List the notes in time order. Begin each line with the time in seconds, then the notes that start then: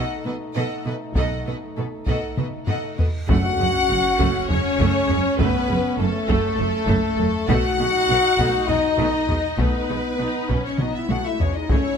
Already playing: A3 D#4 A4 D#5 F#5
0.25 B2 A4 B4 D#5
0.54 B2 A4 D#5 F#5
0.86 B2 A4 B4 D#5
1.15 B1 B2 A4 D#5 F#5, taiko, reverse cymbal
1.46 B2 A4 B4 D#5
1.76 B2 A4 B4
2.06 B2 A4 D#5 F#5, taiko
2.37 B2 A4 B4 D#5, taiko mid
2.66 B2 A4 D#5 F#5, taiko low-mid
2.98 B2 A4 B4 D#5, taiko low
3.27 F#1 F#2 A3 C#4 F#4 F#5, taiko, sub drop
3.58 F#1 F#2 G#3
3.89 F#1 F#2 A3
4.19 F#1 F#2 A3, taiko
4.48 F#1 F#2 G#3 C#4 C#5, taiko low
4.79 F#1 F#2 A3, taiko
5.07 F#1 F#2 G#3, taiko low
5.37 F#1 F#2 A3 B3 B4, taiko
5.68 F#1 F#2 G#3
5.98 F#1 F#2 A3 A4
6.27 F#1 F#2 A3, taiko
6.58 F#1 F#2 A3, taiko low
6.87 F#1 F#2 A3, taiko
7.18 F#1 F#2 A3, taiko low
7.48 B1 B2 A3 D#4 F#4 F#5, taiko
7.78 B1 B2 G#3
8.08 B1 B2 A3
8.38 B1 B2 A3, taiko
8.67 B1 B2 G#3 D#4 D#5, taiko low
8.98 B1 B2 A3, taiko
9.28 B1 B2 G#3, taiko low
9.58 B1 B2 A3 B3 B4, taiko
9.89 B1 B2 G#3
10.19 B1 B2 D#4
10.49 B1 B2 C#4, taiko
10.64 C#4 C#5
10.78 B1 B2 B3 D#4 D#5, taiko mid
10.93 E4 E5
11.09 B1 B2 A3 F#4 F#5, taiko high
11.26 E4 E5
11.40 B1 B2 G#3 C#4 C#5, taiko low
11.55 D#4 D#5
11.70 C#2 C#3 A3 C#4 E4 C#5, taiko